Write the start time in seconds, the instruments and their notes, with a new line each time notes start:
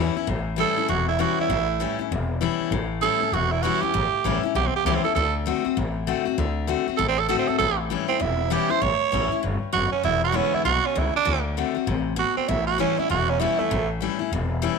Already playing: upright bass E2, steel-string acoustic guitar E2 E3 G3
0.00 steel-string acoustic guitar C#4 E4
0.16 steel-string acoustic guitar C#4 E4, muted upright bass stroke
0.27 upright bass A1, steel-string acoustic guitar A2
0.56 steel-string acoustic guitar E3 G3 C#4 E4, tenor saxophone A4
0.77 steel-string acoustic guitar C#4 E4, muted upright bass stroke
0.88 upright bass E1, steel-string acoustic guitar E2, tenor saxophone F#4
1.08 tenor saxophone E4
1.19 steel-string acoustic guitar E3 G3 C#4 E4, tenor saxophone F#4
1.38 tenor saxophone E4, muted upright bass stroke
1.49 upright bass A1, steel-string acoustic guitar A2
1.80 steel-string acoustic guitar E3 G3 C#4 E4
1.99 steel-string acoustic guitar C#4 E4, muted upright bass stroke
2.11 upright bass E1, steel-string acoustic guitar E2
2.41 steel-string acoustic guitar E3 G3 C#4 E4
2.60 muted upright bass stroke
2.71 upright bass A1, steel-string acoustic guitar A2
3.01 steel-string acoustic guitar E3 G3 C#4 E4, tenor saxophone A4
3.20 steel-string acoustic guitar C#4 E4, muted upright bass stroke
3.32 upright bass E1, steel-string acoustic guitar E2, tenor saxophone F#4
3.51 tenor saxophone E4
3.63 steel-string acoustic guitar E3 G3 C#4 E4, tenor saxophone F#4
3.81 steel-string acoustic guitar C#4 E4, tenor saxophone G4, muted upright bass stroke
3.94 upright bass A1, steel-string acoustic guitar A2
4.12 muted upright bass stroke
4.24 upright bass A1, steel-string acoustic guitar E3 G3 C#4 E4
4.43 steel-string acoustic guitar C#4 E4, muted upright bass stroke
4.55 upright bass B1, steel-string acoustic guitar E2, tenor saxophone G4
4.66 tenor saxophone C4
4.76 tenor saxophone G4
4.85 upright bass C#2, steel-string acoustic guitar E3 G3 C#4 E4, tenor saxophone G4
4.95 tenor saxophone C4
5.04 steel-string acoustic guitar C#4 E4, tenor saxophone A4
5.15 upright bass D2, steel-string acoustic guitar D3, tenor saxophone A4
5.46 steel-string acoustic guitar D3 A3 C4 F#4
5.65 steel-string acoustic guitar C4 F#4, muted upright bass stroke
5.77 upright bass A1, steel-string acoustic guitar A2
6.07 steel-string acoustic guitar D3 A3 C4 F#4
6.25 steel-string acoustic guitar C4 F#4, muted upright bass stroke
6.38 upright bass D2, steel-string acoustic guitar D3
6.67 steel-string acoustic guitar D3 A3 C4 F#4
6.87 steel-string acoustic guitar C4 F#4, muted upright bass stroke
6.97 upright bass A1, steel-string acoustic guitar A2, tenor saxophone A4
7.08 tenor saxophone C4
7.19 tenor saxophone A4
7.29 steel-string acoustic guitar D3 A3 C4 F#4, tenor saxophone A4
7.38 tenor saxophone C4
7.48 steel-string acoustic guitar C4 F#4, tenor saxophone A4, muted upright bass stroke
7.58 upright bass A1, steel-string acoustic guitar A2, tenor saxophone A4
7.90 steel-string acoustic guitar E3 G3 C#4 E4
8.08 tenor saxophone C4, steel-string acoustic guitar C#4 E4, muted upright bass stroke
8.20 upright bass E1, steel-string acoustic guitar E2, tenor saxophone E4
8.50 steel-string acoustic guitar E3 G3 C#4 E4, tenor saxophone G4
8.69 steel-string acoustic guitar C#4 E4, tenor saxophone C5, muted upright bass stroke
8.81 upright bass A1, steel-string acoustic guitar A2, tenor saxophone C#5
9.01 muted upright bass stroke
9.12 upright bass A1, steel-string acoustic guitar E3 G3 C#4 E4
9.32 steel-string acoustic guitar C#4 E4, muted upright bass stroke
9.43 upright bass G1, steel-string acoustic guitar G2
9.63 muted upright bass stroke
9.73 upright bass F#1, steel-string acoustic guitar F#2, tenor saxophone F#4
9.92 tenor saxophone C#4, muted upright bass stroke
10.03 upright bass E1, steel-string acoustic guitar E2, tenor saxophone E4
10.24 tenor saxophone F#4
10.32 steel-string acoustic guitar D3 G#3 B3 E4, tenor saxophone C#4
10.54 tenor saxophone E4, muted upright bass stroke
10.65 upright bass B1, steel-string acoustic guitar B2, tenor saxophone F#4
10.86 tenor saxophone C#4
10.95 upright bass C#2, steel-string acoustic guitar C#3, tenor saxophone E4
11.16 tenor saxophone D4, muted upright bass stroke
11.25 upright bass D2, steel-string acoustic guitar D3
11.57 steel-string acoustic guitar D3 A3 C4 F#4
11.75 steel-string acoustic guitar C4 F#4, muted upright bass stroke
11.87 upright bass A1, steel-string acoustic guitar C3
12.16 steel-string acoustic guitar B2, tenor saxophone F#4
12.37 tenor saxophone C4, muted upright bass stroke
12.48 upright bass A1, steel-string acoustic guitar A2, tenor saxophone E4
12.67 tenor saxophone F#4
12.78 steel-string acoustic guitar E3 G3 C#4 E4, tenor saxophone C#4
12.97 steel-string acoustic guitar C#4 E4, tenor saxophone E4, muted upright bass stroke
13.10 upright bass E1, steel-string acoustic guitar E2, tenor saxophone F#4
13.29 tenor saxophone C#4
13.40 steel-string acoustic guitar E3 G3 C#4 E4, tenor saxophone E4
13.59 tenor saxophone A3, steel-string acoustic guitar C#4 E4, muted upright bass stroke
13.71 upright bass A1, steel-string acoustic guitar A2
14.01 steel-string acoustic guitar E3 G3 C#4 E4
14.19 steel-string acoustic guitar C#4 E4, muted upright bass stroke
14.32 upright bass E1, steel-string acoustic guitar E2
14.62 steel-string acoustic guitar E3 G3 C#4 E4